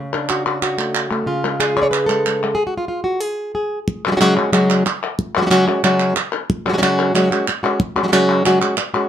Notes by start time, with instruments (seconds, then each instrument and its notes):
Already playing: nylon-string guitar C#3
0.14 nylon-string guitar D4
0.29 nylon-string guitar F#4, clap
0.46 nylon-string guitar F#4
0.62 nylon-string guitar F#4, clap
0.78 nylon-string guitar A3, clap
0.95 clap
1.11 nylon-string guitar A3
1.26 nylon-string guitar C#3 F4
1.44 nylon-string guitar G#3
1.60 nylon-string guitar G#4, clap
1.77 nylon-string guitar C#5
1.82 nylon-string guitar C#5 D5
1.91 nylon-string guitar B4, clap
2.06 nylon-string guitar G#3 A4, clap
2.26 nylon-string guitar G#3, clap
2.44 nylon-string guitar G#3
2.55 nylon-string guitar G#4
2.67 nylon-string guitar F#4
2.78 nylon-string guitar F4
2.88 nylon-string guitar F4
3.04 nylon-string guitar F#4
3.20 nylon-string guitar G#4
3.55 nylon-string guitar G#4
3.88 muted nylon-string guitar stroke
4.07 nylon-string guitar F#3 G#3 C#4 F#4
4.11 nylon-string guitar F#3 G#3 C#4 F#4
4.16 nylon-string guitar F#3 G#3 C#4 F#4
4.21 nylon-string guitar C#3 F#3 G#3 C#4 F#4, clap
4.37 nylon-string guitar G#3 C#4
4.52 nylon-string guitar C#3 F#3 G#3 C#4 F#4, clap
4.70 clap
4.85 muted nylon-string guitar stroke, clap
5.19 muted nylon-string guitar stroke
5.37 nylon-string guitar F#3 G#3 C#4 F#4
5.41 nylon-string guitar F#3 G#3 C#4 F#4
5.46 nylon-string guitar F#3 G#3 C#4 F#4
5.50 nylon-string guitar C#3 F#3 G#3 C#4 F#4, clap
5.68 nylon-string guitar C#4
5.83 nylon-string guitar C#3 F#3 G#3 C#4 F#4, clap
6.00 clap
6.16 muted nylon-string guitar stroke, clap
6.50 muted nylon-string guitar stroke
6.66 nylon-string guitar F#3 G#3 C#4 F#4
6.72 nylon-string guitar F#3 G#3 C#4 F#4
6.78 nylon-string guitar F#3 G#3 C#4 F#4
6.82 nylon-string guitar C#3 F#3 G#3 C#4 F#4, clap
7.14 nylon-string guitar C#3 F#3 G#3 C#4 F#4, clap
7.31 nylon-string guitar G#3 C#4 F#4, clap
7.48 muted nylon-string guitar stroke, clap
7.63 nylon-string guitar G#3 C#4 F#4, clap
7.80 muted nylon-string guitar stroke
7.96 nylon-string guitar G#3 C#4 F#4
8.03 nylon-string guitar F#3 G#3 C#4 F#4
8.08 nylon-string guitar F#3 G#3 C#4 F#4
8.12 nylon-string guitar C#3 F#3 G#3 C#4 F#4, clap
8.45 nylon-string guitar C#3 F#3 G#3 C#4 F#4, clap
8.61 nylon-string guitar G#3 C#4 F#4, clap
8.77 muted nylon-string guitar stroke, clap
8.94 nylon-string guitar G#3 C#4 F#4